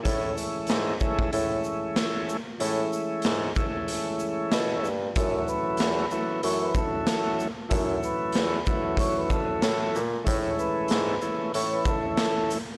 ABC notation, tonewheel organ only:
X:1
M:4/4
L:1/8
Q:"Swing 16ths" 1/4=94
K:F#m
V:1 name="Tonewheel organ"
[E,G,A,CE]3 [E,G,A,CE] [E,G,A,CE]3 z | [E,G,A,CE]3 [E,G,A,CE]4 z | [E,F,A,CE]3 [E,F,A,CE] [E,F,A,CE]3 z | [E,F,A,CE]3 [E,F,A,CE]4 z |
[E,G,A,CE]3 [E,G,A,CE] [E,A,CE]3 z |]